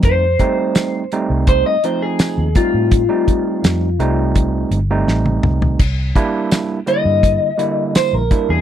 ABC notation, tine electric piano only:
X:1
M:4/4
L:1/16
Q:1/4=83
K:Fmix
V:1 name="Tine electric piano"
[G,A,CE] z [G,A,CE]4 [G,A,CE]4 [F,A,CE]4 [G,A,CE]2- | [G,A,CE] [G,A,CE]4 z [G,A,CE]4 z [G,A,CE]4- [G,A,CE] | z2 [G,B,D=E]4 [D,G,B,E]4 [D,G,B,E]4 [G,B,DE]2 |]